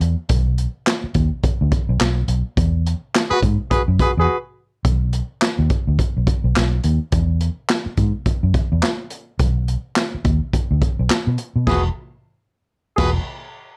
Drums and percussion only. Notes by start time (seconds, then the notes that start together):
0.01 closed hi-hat
0.29 kick, closed hi-hat
0.58 closed hi-hat
0.86 snare, clap, closed hi-hat
1.14 kick, closed hi-hat
1.43 kick, closed hi-hat
1.72 kick, closed hi-hat
2.01 snare, clap, closed hi-hat
2.28 closed hi-hat
2.57 kick, closed hi-hat
2.86 closed hi-hat
3.15 snare, clap, closed hi-hat
3.43 kick, closed hi-hat
3.71 kick, closed hi-hat
3.99 kick, closed hi-hat
4.85 kick, closed hi-hat
5.13 closed hi-hat
5.42 snare, clap, closed hi-hat
5.70 kick, closed hi-hat
5.99 kick, closed hi-hat
6.27 kick, closed hi-hat
6.56 snare, clap, closed hi-hat
6.83 closed hi-hat
7.12 kick, closed hi-hat
7.40 closed hi-hat
7.69 snare, clap, closed hi-hat
7.97 kick, closed hi-hat
8.26 kick, closed hi-hat
8.54 kick, closed hi-hat
8.83 snare, clap, closed hi-hat
9.10 closed hi-hat
9.39 kick, closed hi-hat
9.68 closed hi-hat
9.96 snare, clap, closed hi-hat
10.25 kick, closed hi-hat
10.53 kick, closed hi-hat
10.82 kick, closed hi-hat
11.10 snare, clap, closed hi-hat
11.38 closed hi-hat
11.67 kick, snare, crash
12.98 kick, snare, crash